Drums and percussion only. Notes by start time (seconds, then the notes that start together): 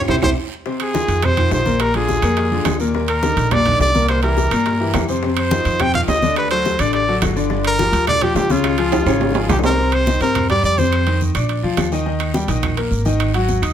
0.08 low bongo, low conga, high timbale, long guiro, claves
0.22 low bongo, low conga, high timbale, long guiro, claves
0.66 high bongo, high conga, long guiro
0.80 high conga, high timbale, claves
0.94 high bongo, high conga, short guiro
1.08 high conga, high timbale, short guiro
1.22 high bongo, high conga, low conga, high timbale, long guiro, claves
1.37 high conga, low conga, high timbale
1.51 high bongo, low bongo, short guiro
1.65 high conga, short guiro
1.80 high bongo, high conga, high timbale, long guiro, claves
1.94 high bongo, high conga, high timbale
2.08 high bongo, high conga, short guiro
2.22 high bongo, high conga, high timbale, short guiro, claves
2.37 high bongo, high conga, high timbale, long guiro
2.52 high bongo, high conga
2.65 high bongo, low bongo, high conga, high timbale, low timbale, short guiro, claves
2.80 high conga, short guiro
2.94 high bongo, high conga, long guiro
3.08 high conga, high timbale, claves
3.23 high bongo, high conga, short guiro
3.37 high conga, high timbale, short guiro
3.51 high bongo, high conga, low conga, high timbale, long guiro, claves
3.66 high conga, low conga, high timbale
3.80 high bongo, low bongo, high conga, short guiro
3.95 high conga, short guiro
4.08 high bongo, high conga, high timbale, long guiro, claves
4.23 high bongo, high conga, high timbale
4.37 high bongo, high conga, short guiro
4.51 high bongo, high conga, high timbale, short guiro, claves
4.66 high bongo, high conga, high timbale, long guiro
4.80 high conga
4.94 high bongo, low bongo, high conga, high timbale, low timbale, short guiro, claves
5.09 high conga, short guiro
5.23 high bongo, high conga, long guiro
5.37 high conga, high timbale, claves
5.51 high bongo, high conga, short guiro
5.65 high conga, high timbale, short guiro
5.80 high bongo, high conga, low conga, high timbale, long guiro, claves
5.94 high conga, low conga, high timbale
6.08 high bongo, low bongo, high conga, low timbale, short guiro
6.22 high conga, short guiro
6.36 high bongo, high timbale, long guiro, claves
6.51 high bongo, high conga, high timbale
6.65 high bongo, high conga, short guiro
6.79 high bongo, high conga, high timbale, short guiro, claves
6.93 high bongo, high conga, high timbale, long guiro
7.08 high bongo, high conga
7.22 high bongo, low bongo, high conga, high timbale, short guiro, claves
7.37 short guiro
7.50 high bongo, high conga, long guiro
7.65 high conga, high timbale, claves
7.79 high bongo, high conga, short guiro
7.93 high conga, high timbale, short guiro
8.07 high bongo, high conga, low conga, high timbale, claves
8.21 high conga, low conga, high timbale
8.36 high bongo, low bongo, low timbale, short guiro
8.50 high conga, short guiro
8.64 high bongo, high conga, high timbale, long guiro, claves
8.78 high conga, high timbale
8.92 high bongo, high conga, high timbale, short guiro
9.03 high bongo, high timbale, short guiro
9.07 high conga, claves
9.21 high conga, low timbale, long guiro
9.31 low bongo
9.35 high conga, low timbale
9.49 low bongo, high conga, low timbale, short guiro, claves
9.59 low bongo
9.63 high conga, low timbale, short guiro
9.69 low bongo
9.78 high conga, long guiro
9.92 high conga, high timbale, claves
10.06 high conga, short guiro
10.21 high timbale, short guiro
10.35 high conga, low conga, high timbale, long guiro, claves
10.49 high conga, low conga, high timbale
10.64 high conga, short guiro
10.78 high conga, short guiro
10.92 high conga, high timbale, long guiro, claves
11.07 high conga, high timbale
11.21 high conga, short guiro
11.35 high conga, high timbale, short guiro, claves
11.49 high conga, high timbale, long guiro
11.63 high conga
11.77 high conga, high timbale, low timbale, short guiro, claves
11.92 high conga, short guiro
12.06 high conga, long guiro
12.20 high conga, high timbale, claves
12.34 high conga, short guiro
12.48 high conga, high timbale, short guiro
12.63 high conga, low conga, high timbale, long guiro, claves
12.77 high conga, high timbale
12.91 high conga, short guiro
13.05 high conga, short guiro
13.20 high timbale, long guiro, claves
13.34 high conga, high timbale
13.49 high conga, short guiro
13.62 high conga, high timbale, short guiro, claves